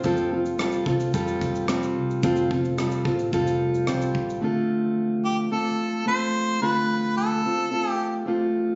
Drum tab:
SH |xx-xxx-xxxxxxx-x|xx-xxx-xxx-xxx-x|----------------|----------------|
SD |----r--r----r---|----r-------r---|----------------|----------------|
BD |o-----o-o-o-----|o-o---o-o-----o-|----------------|----------------|